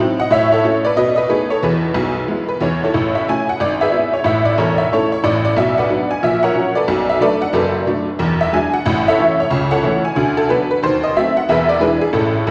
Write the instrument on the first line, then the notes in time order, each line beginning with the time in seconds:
honky-tonk piano
0.00 F#3 C4 D#4
0.20 D#5 F#5
0.31 A2 C#5 E5
0.52 A4 C#5
0.64 A3 C#4 E4
0.85 B4 D5
0.96 B2 B4 D#5
1.16 B4 D#5
1.29 A3 B3 D#4 G#4 B4
1.50 A4 C#5
1.63 E2 E3 G#4 B4
1.94 B1 B2
2.28 G#3 B3 E4
2.49 B4
2.61 E2 E3 E4 G#4 C#5
2.84 E4 A4 C#5
2.94 A1 A2
3.15 E5
3.28 A3 C#4 E4 G#5
3.49 F#5
3.60 G#1 G#2 D5
3.81 G#4 B4 E5
3.92 B3 E4
4.14 C#5
4.24 A1 A2 E5
4.45 D5
4.58 E1 E2 E4 A4 C#5
4.78 E5
4.92 A3 C#4 E4 A4 C#5
5.12 C#5
5.24 A1 A2 D5
5.45 D5
5.57 B1 B2 E5
5.78 B4 D5 F#5
5.90 F#3 B3 D4
6.11 G#5
6.23 A#1 A#2 E5
6.43 A#4 C#5 F#5
6.54 F#3 C#4
6.75 A4 B4 D5
6.88 B1 B2
7.09 E5
7.21 F#3 A3 D4 A4 B4 D5
7.42 F#5
7.53 F#1 F#2 A4 B4 D5
7.86 F#3 A3 D4
8.19 E1 E2
8.41 E5
8.53 F#3 G#3 D4 G#5
8.74 F#5
8.86 A1 A2
9.08 A4 C#5 E5
9.19 E3 A3 C#4
9.40 C#5
9.50 C#2 C#3
9.71 A4 C#5 F#5
9.84 E3 A3 C#4
10.05 G#5
10.16 D2 D3
10.37 A4
10.49 F#3 B3 D4 F#4 B4
10.71 B4
10.83 D#2 D#3 C5
11.04 D#5
11.16 F#3 A3 C4 E5
11.37 F#5
11.49 E1 E2 G#4 B4 E5
11.69 D5
11.80 E3 G#3 D4 E4 G#4 B4
12.01 G#4
12.13 A1 A2 C#4 E4 A4
12.47 E1 E2